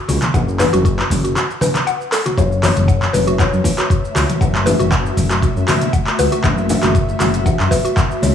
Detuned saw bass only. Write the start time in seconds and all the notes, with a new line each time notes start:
0.09 C#2
0.34 F#1
0.73 F#1
1.10 F#1
2.38 F#1
2.77 F#1
3.14 F#1
3.53 F#2
3.90 F#1
4.16 C#2
4.41 F#1
4.80 F#1
5.17 F#1
5.56 F#2
5.93 F#1
6.19 C#2
6.44 F#1
6.83 F#1
7.21 F#1
7.60 F#2
7.97 F#1
8.22 C#2